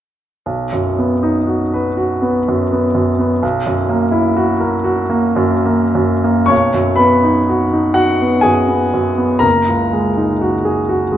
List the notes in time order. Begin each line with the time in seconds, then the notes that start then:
0.46 B1
0.73 F#2
0.99 B3
1.23 D#4
1.47 F#4
1.73 B4
1.97 F#4
2.22 B3
2.48 F#2
2.72 B3
2.95 F#2
3.19 B3
3.43 B1
3.67 F#2
3.89 A#3
4.12 E4
4.37 F#4
4.60 A#4
4.84 F#4
5.10 A#3
5.36 F#2
5.66 A#3
5.95 F#2
6.24 A#3
6.46 B1 C#5 C#6
6.74 F#2
6.96 B3 B4 B5
7.24 D#4
7.49 F#4
7.73 D#4
7.94 F#4 F#5
8.21 B3
8.41 F#2 G#4 G#5
8.68 B3
8.94 F#2
9.18 B3
9.39 F#1 A#4 A#5
9.68 C#2
9.93 G#3
10.17 D#4
10.41 F#4
10.65 G#4
10.89 F#4
11.12 G#3